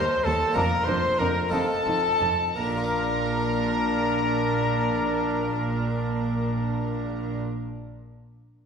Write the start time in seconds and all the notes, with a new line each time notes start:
Already playing: D#2 D#4 G4 C5
0.24 D#2 G3 A4 A5
0.52 A#3 D4 F4 A#4
0.56 F1 F2 A#4 A#5
0.85 F1 F2 D4 C5 C6
1.18 F1 F2 D4 A#4 A#5
1.48 C4 D#4 F4 A4 A5
1.53 F1 F2 A4
1.86 F1 F2 D#4
2.20 F1 F2 D#4
2.55 A#1 A#2 D4 A#4 A#5
2.63 A#3
2.70 D4
2.77 F4
2.84 D5